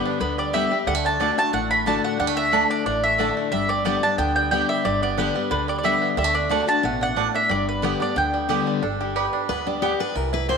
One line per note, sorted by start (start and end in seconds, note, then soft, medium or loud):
0.00 0.18 G2 loud
0.00 0.19 D3 loud
0.00 0.20 G3 medium
0.00 0.20 B3 medium
0.00 0.20 B3 loud
0.00 0.20 G4 loud
0.00 0.19 B4 medium
0.06 1.05 D4 medium
0.20 0.65 D2 medium
0.20 0.52 D3 loud
0.20 0.68 B3 medium
0.20 0.37 B4 medium
0.38 0.70 G3 medium
0.38 0.53 D5 medium
0.53 0.70 D3 medium
0.53 0.71 G3 loud
0.53 0.63 B3 medium
0.53 0.71 B3 loud
0.53 0.64 G4 loud
0.53 0.87 G4 medium
0.53 0.70 G4 medium
0.53 0.64 D5 loud
0.53 0.77 E5 loud
0.53 0.64 G5 loud
0.71 0.86 G3 medium
0.71 0.87 B3 soft
0.71 0.86 G4 medium
0.87 1.30 D2 medium
0.87 1.18 D3 medium
0.87 0.95 G3 medium
0.87 1.04 F#5 loud
0.95 1.21 A3 medium
1.05 1.20 D4 medium
1.05 1.36 A5 loud
1.20 1.37 D3 medium
1.20 1.30 A3 medium
1.20 1.37 A3 medium
1.20 1.53 D4 medium
1.20 1.38 D4 loud
1.20 1.30 F#4 medium
1.20 1.36 F#4 medium
1.20 1.30 D5 loud
1.20 1.30 A5 loud
1.38 1.70 A3 medium
1.38 1.54 D4 soft
1.38 1.53 F#4 medium
1.38 1.53 A5 loud
1.53 1.97 A1 medium
1.53 2.16 A2 loud
1.53 1.86 D4 medium
1.53 1.70 F#5 loud
1.71 2.17 A3 medium
1.71 1.87 B5 loud
1.86 2.18 D3 medium
1.86 1.96 A3 medium
1.86 2.18 A3 loud
1.86 2.05 D4 medium
1.86 2.19 D4 medium
1.86 1.96 F#4 medium
1.86 2.19 F#4 loud
1.86 1.96 D5 loud
1.86 1.96 A5 loud
1.86 2.03 A5 loud
2.04 2.37 D4 medium
2.04 2.18 F#5 medium
2.19 2.63 D2 medium
2.19 2.51 D3 medium
2.19 2.27 G3 medium
2.19 2.36 F#5 loud
2.27 2.53 A3 medium
2.37 2.53 D4 medium
2.37 2.71 E5 loud
2.52 2.84 D3 medium
2.52 2.62 A3 medium
2.52 2.85 A3 loud
2.52 2.70 D4 medium
2.52 2.85 D4 loud
2.52 2.62 F#4 medium
2.52 2.85 F#4 medium
2.52 2.62 D5 loud
2.52 2.62 A5 loud
2.70 2.86 D4 medium
2.70 2.85 D5 loud
2.86 3.29 A1 medium
2.86 3.49 A2 loud
2.86 3.20 D4 medium
2.86 3.02 D5 loud
3.04 3.36 A3 medium
3.04 3.34 E5 loud
3.18 3.50 D3 medium
3.18 3.28 A3 medium
3.18 3.51 A3 medium
3.18 4.03 D4 medium
3.18 3.51 D4 loud
3.18 3.28 F#4 loud
3.18 3.52 F#4 medium
3.18 3.28 D5 loud
3.18 3.29 A5 loud
3.37 3.52 A3 medium
3.52 3.95 G1 medium
3.52 4.15 G2 medium
3.52 4.36 G3 medium
3.52 3.68 E5 loud
3.69 4.52 G4 medium
3.69 3.84 D5 loud
3.84 4.02 D3 medium
3.84 4.03 G3 medium
3.84 3.94 B3 medium
3.84 4.17 B3 medium
3.84 4.03 B3 loud
3.84 3.95 G4 medium
3.84 4.01 G4 loud
3.84 3.95 D5 medium
3.84 4.02 D5 medium
3.84 3.95 G5 loud
4.03 4.19 B3 medium
4.03 5.18 D4 medium
4.03 4.18 G4 medium
4.03 4.18 A5 loud
4.18 4.62 D2 medium
4.18 4.50 D3 loud
4.18 4.66 B3 medium
4.18 4.35 G5 medium
4.36 4.68 G3 medium
4.36 4.50 G5 medium
4.51 4.83 D3 medium
4.51 4.84 G3 medium
4.51 4.61 B3 medium
4.51 4.84 B3 loud
4.51 4.61 G4 loud
4.51 4.99 G4 medium
4.51 4.84 G4 loud
4.51 4.61 D5 medium
4.51 4.68 G5 medium
4.51 4.61 G5 loud
4.69 4.84 G3 medium
4.69 4.85 E5 medium
4.85 5.28 G1 loud
4.85 5.48 G2 medium
4.85 5.32 G3 medium
4.85 5.02 D5 medium
5.02 5.48 B3 medium
5.02 5.17 D5 medium
5.18 5.35 D3 medium
5.18 5.35 G3 medium
5.18 5.27 B3 medium
5.18 5.35 B3 medium
5.18 5.50 D4 medium
5.18 5.27 G4 medium
5.18 5.33 G4 loud
5.18 5.50 B4 medium
5.18 5.28 D5 medium
5.18 5.28 G5 medium
5.35 5.67 G3 medium
5.35 5.51 B3 soft
5.35 5.50 G4 medium
5.51 5.95 D2 medium
5.51 5.82 D3 loud
5.51 6.34 D4 medium
5.51 5.69 B4 medium
5.68 6.14 G3 medium
5.68 5.77 D5 medium
5.78 5.84 D5 medium
5.83 6.15 D3 medium
5.83 6.16 G3 medium
5.83 5.94 B3 medium
5.83 6.16 B3 medium
5.83 6.17 G4 medium
5.83 5.94 G4 loud
5.83 6.17 G4 loud
5.83 5.94 D5 medium
5.83 6.08 E5 medium
5.83 5.94 G5 medium
6.02 6.17 B3 medium
6.17 6.61 D2 medium
6.17 6.48 D3 medium
6.17 6.24 G3 medium
6.17 6.34 E5 medium
6.24 6.50 A3 medium
6.34 6.50 D4 medium
6.34 6.50 D5 medium
6.49 6.67 D3 medium
6.49 6.67 A3 medium
6.49 6.60 A3 medium
6.49 6.67 D4 medium
6.49 6.68 D4 medium
6.49 6.60 F#4 medium
6.49 6.66 F#4 medium
6.49 6.60 D5 medium
6.49 6.69 D5 loud
6.49 6.61 A5 medium
6.67 7.01 D4 medium
6.67 6.84 D4 medium
6.67 6.83 F#4 medium
6.67 6.84 A5 loud
6.83 7.27 A1 medium
6.83 7.15 B2 loud
6.83 7.31 A3 medium
6.83 7.01 F#5 medium
7.01 7.17 D4 medium
7.01 7.35 F#5 medium
7.16 7.48 A2 medium
7.16 7.26 A3 medium
7.16 7.35 D4 medium
7.16 7.26 F#4 medium
7.16 7.27 D5 loud
7.16 7.27 A5 loud
7.35 7.83 D4 medium
7.35 7.50 E5 medium
7.49 7.93 G1 loud
7.49 8.13 G2 loud
7.49 7.97 G3 medium
7.49 7.67 D5 medium
7.69 7.83 B4 medium
7.82 8.00 D3 medium
7.82 8.00 G3 medium
7.82 7.93 B3 loud
7.82 8.15 B3 medium
7.82 8.00 B3 medium
7.82 7.93 G4 medium
7.82 7.99 G4 loud
7.82 7.93 D5 loud
7.82 8.01 D5 medium
7.82 7.93 G5 medium
8.00 8.17 B3 soft
8.00 8.46 D4 medium
8.00 8.15 G4 medium
8.00 8.16 D5 medium
8.16 8.60 D2 medium
8.16 8.47 D3 loud
8.16 8.64 B3 medium
8.16 8.48 G5 medium
8.34 8.66 G3 medium
8.49 8.81 D3 loud
8.49 8.81 G3 medium
8.49 8.59 B3 medium
8.49 8.82 B3 medium
8.49 8.83 G4 medium
8.49 8.59 G4 loud
8.49 8.82 G4 medium
8.49 8.59 D5 loud
8.49 8.59 G5 loud
8.67 8.83 G3 medium
8.82 9.26 G1 medium
8.82 9.30 D4 medium
8.82 9.01 A4 medium
9.01 9.66 G3 medium
9.01 9.16 G4 medium
9.16 9.25 B3 medium
9.16 9.63 G4 medium
9.16 9.26 G4 medium
9.16 9.40 B4 medium
9.16 9.26 D5 medium
9.16 9.26 G5 medium
9.33 9.79 D4 medium
9.49 9.93 D2 medium
9.49 9.81 B3 medium
9.49 9.66 B4 medium
9.67 10.12 G3 medium
9.67 9.82 D4 medium
9.82 9.92 B3 loud
9.82 10.16 B3 medium
9.82 9.99 G4 medium
9.82 9.92 G4 loud
9.82 9.92 D5 loud
9.82 9.92 G5 loud
10.00 10.16 D4 medium
10.00 10.15 B4 medium
10.15 10.57 C2 loud
10.15 10.57 E3 medium
10.15 10.33 A#4 medium
10.33 10.57 E4 medium
10.33 10.49 B4 medium
10.49 10.57 A#3 medium
10.49 10.57 C4 medium
10.49 10.57 E4 medium
10.49 10.57 C5 medium
10.49 10.57 G5 medium